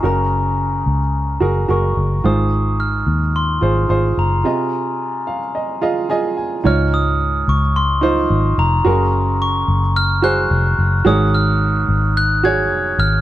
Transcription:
<<
  \new Staff \with { instrumentName = "Glockenspiel" } { \time 4/4 \key des \major \tempo 4 = 109 bes''2. des'''4 | ees'''4 f'''4 c'''4. bes''8 | aes''4. r2 r8 | f'''8 ees'''4 des'''8 c'''4. bes''8~ |
bes''4 des'''4 f'''8 ges'''4 r8 | ees'''8 f'''4. ges'''8 aes'''4 f'''8 | }
  \new Staff \with { instrumentName = "Upright piano" } { \time 4/4 \key des \major <ges' aes' bes'>4. r4 <ges' aes' bes'>8 <ges' aes' bes'>4 | <f' aes' c''>4. r4 <f' aes' c''>8 <f' aes' c''>4 | <f' aes' ees''>4. r4 <f' aes' ees''>8 <f' aes' ees''>4 | <ees' f' des''>4. r4 <ees' f' c''>4. |
<ges' aes' bes'>4. r4 <ges' aes' c''>4. | <ges' aes' des''>4. r4 <ges' aes' des''>4. | }
  \new Staff \with { instrumentName = "Upright piano" } { \clef bass \time 4/4 \key des \major des4. r2 r8 | <aes, ees>4. r2 r8 | c4. f''8 ees''8 f''8 aes''8 aes''8 | aes,4. r2 r8 |
des4. r2 r8 | <aes, ees>4. r2 r8 | }
  \new Staff \with { instrumentName = "Fingered electric bass" } { \clef bass \time 4/4 \key des \major ges,,4. des,4 ges,,8 ges,,8 ges,,8 | aes,,4. ees,4 aes,,8 aes,,8 ges,,8 | r1 | des,4. des,4. aes,,8 f,,8 |
ges,,4. ges,,4. f,,8 ges,,8 | aes,,4. aes,,4. f,,8 aes,,8 | }
>>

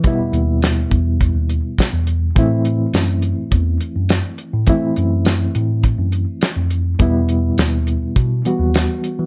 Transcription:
<<
  \new Staff \with { instrumentName = "Reed electric piano" } { \time 4/4 \key e \minor \tempo 4 = 103 <b, g b e'>1 | <e a c' e'>1 | <e a c' e'>1 | <b, g b e'>2~ <b, g b e'>8 <e g b fis'>4. | }
  \new Staff \with { instrumentName = "Tine electric piano" } { \clef bass \time 4/4 \key e \minor r16 e,16 dis,4 e,8. dis,8 r8 e,8. | a,4 fis,8. a,16 e,8 r16 fis,8 r8 a,16 | r16 a,16 fis,4 a,8. fis,8 r8 f,8. | e,4 dis,8. e,16 b,8 r16 dis,8 r8 e16 | }
  \new DrumStaff \with { instrumentName = "Drums" } \drummode { \time 4/4 <hh bd>8 hh8 <hh sn tamb>8 <hh bd>8 <hh bd>8 hh8 <hh bd sn tamb>8 hh8 | <hh bd>8 hh8 <hh sn tamb>8 hh8 <hh bd>8 hh8 <hh sn tamb>8 hh8 | <hh bd>8 hh8 <hh sn tamb>8 hh8 <hh bd>8 hh8 <hh sn tamb>8 hh8 | <hh bd>8 hh8 <hh sn tamb>8 hh8 <hh bd>8 hh8 <hh sn tamb>8 hh8 | }
>>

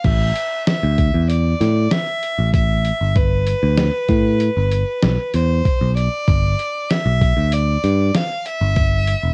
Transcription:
<<
  \new Staff \with { instrumentName = "Violin" } { \time 5/4 \key a \minor \tempo 4 = 96 e''4 e''4 d''4 e''4 e''4 | b'2.~ b'8 c''4 d''8~ | d''4 e''4 d''4 f''8 e''4. | }
  \new Staff \with { instrumentName = "Picked electric bass" } { \clef bass \time 5/4 \key a \minor a,,8 r8. d,8 e,8. a,8 r8. a,,4 g,,16~ | g,,8. d,8 r16 a,8. g,,8 r16 b,,16 r16 e,8 r16 b,,8 r16 | g,,8 r8. b,,8 d,8. g,8 r8. g,,4 e,,16 | }
  \new DrumStaff \with { instrumentName = "Drums" } \drummode { \time 5/4 <cymc hh bd>8 hh8 <hh sn>8 <hh bd>8 hh8 <hh sn>8 <hh sn>8 hh8 <hh bd>8 hh8 | <hh bd>8 hh8 <hh sn>8 <hh bd>8 hh8 hh8 <hh sn>8 hh8 <hh bd>8 hh8 | <hh bd>8 hh8 <hh sn>8 <hh bd>8 hh8 hh8 <hh sn>8 hh8 <hh bd>8 hh8 | }
>>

